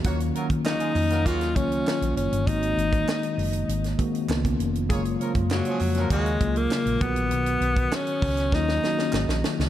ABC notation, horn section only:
X:1
M:4/4
L:1/16
Q:1/4=99
K:Ebm
V:1 name="Horn section"
[B,Gd] z [G,FB] z [D,B,G] [A,FA] z [G,FB] [D,B,G]2 z6 | z16 | [B,Ad] z [F,DB] z [D,B,G] [F,DA] z [F,DB] [D,B,G]2 z6 | z16 |]